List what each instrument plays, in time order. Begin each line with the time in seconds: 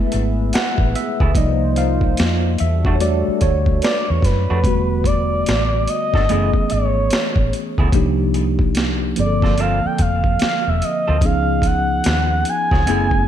Already playing: tine electric piano G#3 A3 B3 E4, analog synth pad B3 G#4 B4 E5
0.12 fingered electric bass G#1, closed hi-hat
0.53 tine electric piano F#5, snare, closed hi-hat
0.78 fingered electric bass A1, kick
0.95 tine electric piano E5, closed hi-hat
1.20 fingered electric bass C#2, clean electric guitar A3 B3 E4 G#4, kick
1.35 fingered electric bass C2, tine electric piano F3 A#3 D#4 D5 D#5, analog synth pad A#3 D#4 F4 C5, kick, closed hi-hat
1.76 tine electric piano F5, closed hi-hat
2.01 kick
2.17 fingered electric bass F2, snare, closed hi-hat
2.58 fingered electric bass E2, analog synth pad G3 D4 F#4 A4, tine electric piano E5, closed hi-hat
2.85 clean electric guitar G3 A3 D4 F#4, kick
2.95 tine electric piano C#5
3.00 tine electric piano G3 A3 D4 F#4 D5, closed hi-hat
3.28 muted fingered electric bass stroke
3.41 fingered electric bass D2, tine electric piano C#5, kick, closed hi-hat
3.66 kick
3.82 tine electric piano B4, analog synth lead D5, snare, closed hi-hat
4.10 fingered electric bass E2, analog synth lead C#5
4.22 fingered electric bass F#2, analog synth lead B4, kick, snare, closed hi-hat
4.50 fingered electric bass F2, clean electric guitar G3 A3 D4 F#4
4.63 fingered electric bass E1, tine electric piano D3 G3 A3 B3 F#4, kick, closed hi-hat
5.04 analog synth lead D5, kick, closed hi-hat
5.46 fingered electric bass A1, snare, closed hi-hat
5.87 analog synth lead D#5, closed hi-hat
6.14 fingered electric bass G1, clean electric guitar G3 D4 F#4 A4, kick, snare
6.29 fingered electric bass F#1, tine electric piano E3 A3 B3 C#4 G#4, clean electric guitar A3 B3 E4 G#4, closed hi-hat
6.54 muted fingered electric bass stroke, kick
6.70 fingered electric bass G#1, analog synth lead C#5, closed hi-hat
7.11 muted fingered electric bass stroke, snare, closed hi-hat
7.36 fingered electric bass A1, kick
7.53 closed hi-hat
7.78 fingered electric bass C#2, clean electric guitar A3 B3 E4 G#4, kick
7.92 fingered electric bass C2, tine electric piano F3 A#3 D4 D#4 G4, kick, closed hi-hat
8.34 closed hi-hat
8.59 kick
8.75 snare, closed hi-hat
9.16 fingered electric bass G1, tine electric piano D3 F3 A#3 C4 G#4, analog synth lead D5, closed hi-hat
9.26 tine electric piano A4
9.42 clean electric guitar A#3 C4 F4 A4, kick, snare
9.58 clean electric guitar A#3 C4 F4 A4, analog synth lead F5, closed hi-hat
9.85 analog synth lead G5, muted fingered electric bass stroke
9.98 fingered electric bass F1, analog synth lead F5, kick, closed hi-hat
10.24 kick
10.39 analog synth lead F5, muted fingered electric bass stroke, snare, closed hi-hat
10.67 fingered electric bass E1, analog synth lead E5
10.78 analog synth lead E5, closed hi-hat
10.84 analog synth lead D#5
11.08 fingered electric bass D2, clean electric guitar A#3 C4 F4 A4
11.21 fingered electric bass C#2, tine electric piano F3 B3 C#4 D#4 G#4, analog synth lead F5, kick, closed hi-hat
11.62 kick, closed hi-hat
11.67 analog synth lead F#5
12.04 fingered electric bass D#2, snare, closed hi-hat
12.45 analog synth lead G#5, closed hi-hat
12.71 fingered electric bass C#2, clean electric guitar F3 B3 C#4 G#4, kick, snare
12.86 fingered electric bass F#1, tine electric piano A3 B3 C#4 E4 G#4, clean electric guitar A3 B3 E4 G#4, closed hi-hat
13.11 kick